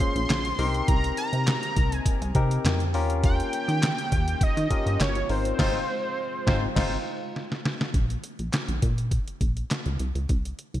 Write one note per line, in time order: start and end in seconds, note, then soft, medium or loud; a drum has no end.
0.00 0.57 G#3 medium
0.00 0.57 A#3 medium
0.00 0.47 C#4 medium
0.00 0.57 C#4 medium
0.00 0.47 F4 medium
0.00 0.47 G#4 medium
0.00 0.47 C5 medium
0.00 0.89 C6 loud
0.00 kick medium
0.00 closed hi-hat medium
0.15 0.27 A#1 medium
0.15 closed hi-hat soft
0.29 0.53 A#1 medium
0.29 snare loud
0.29 clap medium
0.29 closed hi-hat medium
0.45 closed hi-hat soft
0.58 0.82 C2 loud
0.58 2.92 C3 medium
0.58 1.53 C4 loud
0.58 2.92 C4 medium
0.58 2.92 D#4 medium
0.58 1.53 D#4 medium
0.58 2.92 G4 medium
0.58 1.53 G4 medium
0.58 2.92 A#4 medium
0.58 1.54 A#4 loud
0.58 open hi-hat medium
0.74 closed hi-hat soft
0.88 1.12 C2 loud
0.88 1.18 A#5 loud
0.88 kick loud
0.88 closed hi-hat medium
1.04 closed hi-hat medium
1.17 1.96 A#5 loud
1.17 closed hi-hat medium
1.33 1.57 C3 medium
1.33 closed hi-hat soft
1.47 snare loud
1.47 clap loud
1.47 closed hi-hat loud
1.63 closed hi-hat medium
1.76 2.00 C2 medium
1.76 kick loud
1.76 closed hi-hat medium
1.92 2.31 G#5 loud
1.92 closed hi-hat medium
2.06 kick loud
2.06 closed hi-hat loud
2.21 2.33 C2 loud
2.21 closed hi-hat medium
2.35 2.59 C3 medium
2.35 2.82 C4 medium
2.35 2.82 D#4 medium
2.35 2.83 G4 medium
2.35 2.83 A#4 loud
2.35 kick medium
2.35 closed hi-hat medium
2.51 closed hi-hat medium
2.65 2.96 F2 medium
2.65 snare loud
2.65 clap medium
2.65 closed hi-hat medium
2.80 closed hi-hat soft
2.94 3.42 D#2 loud
2.94 5.27 D#3 medium
2.94 5.27 A#3 medium
2.94 5.27 C#4 medium
2.94 3.89 C#4 loud
2.94 5.27 F4 medium
2.94 3.89 F4 loud
2.94 5.27 G4 medium
2.94 3.89 G4 loud
2.94 3.89 A#4 loud
2.94 open hi-hat medium
3.10 closed hi-hat soft
3.24 4.44 G5 loud
3.24 kick loud
3.24 closed hi-hat medium
3.40 closed hi-hat soft
3.53 closed hi-hat medium
3.68 3.92 D#3 medium
3.68 closed hi-hat soft
3.83 snare loud
3.83 clap medium
3.83 closed hi-hat medium
3.98 closed hi-hat medium
4.12 4.36 D#2 medium
4.12 kick loud
4.12 closed hi-hat medium
4.28 closed hi-hat medium
4.41 4.47 D#3 medium
4.41 5.03 D#5 loud
4.41 kick loud
4.41 closed hi-hat loud
4.57 4.68 D#3 loud
4.57 closed hi-hat medium
4.70 5.18 C#4 medium
4.70 5.18 F4 medium
4.70 5.18 G4 medium
4.70 5.18 A#4 medium
4.70 kick medium
4.70 closed hi-hat medium
4.86 4.97 G2 medium
4.86 closed hi-hat soft
5.00 5.24 G1 medium
5.00 5.32 C#5 loud
5.00 snare medium
5.00 clap medium
5.00 closed hi-hat medium
5.15 closed hi-hat soft
5.29 5.53 G#1 loud
5.29 7.91 G#3 medium
5.29 7.91 C4 medium
5.29 5.57 C4 medium
5.29 5.57 D#4 medium
5.29 7.91 F4 medium
5.29 5.58 F4 medium
5.29 5.59 A#4 medium
5.29 7.36 C5 medium
5.29 open hi-hat medium
5.45 closed hi-hat medium
5.58 5.79 G#1 loud
5.58 5.74 G#3 loud
5.58 5.79 C4 loud
5.58 5.79 D#4 loud
5.58 5.74 F4 loud
5.58 5.79 F4 loud
5.58 5.74 C5 loud
5.58 kick loud
5.58 snare loud
5.58 crash medium
6.47 6.67 G#1 loud
6.47 6.62 G#3 loud
6.47 6.67 C4 medium
6.47 6.67 D#4 medium
6.47 6.67 F4 medium
6.47 6.62 F4 loud
6.47 6.62 C5 loud
6.47 kick loud
6.47 snare loud
6.75 6.97 G#1 loud
6.75 6.92 G#3 loud
6.75 6.96 C4 loud
6.75 6.96 D#4 loud
6.75 6.97 F4 loud
6.75 6.92 F4 loud
6.75 6.92 C5 loud
6.75 kick loud
6.75 snare loud
6.75 crash medium
7.36 snare soft
7.52 snare medium
7.65 snare medium
7.81 snare medium
7.94 8.18 A#1 loud
7.94 kick loud
7.94 closed hi-hat medium
8.10 closed hi-hat soft
8.24 closed hi-hat medium
8.39 8.50 A#1 medium
8.39 closed hi-hat soft
8.53 snare loud
8.53 clap medium
8.53 closed hi-hat medium
8.68 8.80 A#1 loud
8.68 closed hi-hat medium
8.82 9.19 A#2 loud
8.82 kick loud
8.82 closed hi-hat medium
8.98 closed hi-hat medium
9.11 kick loud
9.11 closed hi-hat medium
9.28 closed hi-hat medium
9.41 9.65 A#1 medium
9.41 kick medium
9.41 closed hi-hat medium
9.57 closed hi-hat soft
9.71 snare medium
9.71 clap medium
9.71 closed hi-hat medium
9.86 9.97 C#2 medium
9.86 closed hi-hat soft
9.99 10.12 C2 loud
9.99 closed hi-hat medium
10.15 10.26 C#2 loud
10.15 closed hi-hat soft
10.29 10.53 C2 loud
10.29 kick loud
10.29 closed hi-hat medium
10.45 closed hi-hat soft
10.59 closed hi-hat medium
10.74 10.80 C2 medium
10.74 closed hi-hat soft